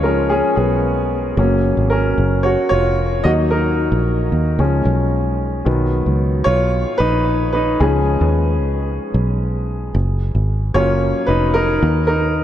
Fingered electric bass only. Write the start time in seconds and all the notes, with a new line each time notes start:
0.04 C#2
0.57 B1
1.37 F#1
1.77 G#1
2.18 F#1
2.71 F1
3.25 D#2
3.92 A#1
4.32 D#2
4.59 C#2
4.85 B1
5.66 B1
6.06 C#2
6.47 B1
7.00 A#1
7.81 C#2
8.21 D#2
8.61 C#2
9.14 B1
9.95 F#1
10.35 G#1
10.75 F#1
11.28 F1
11.83 D#2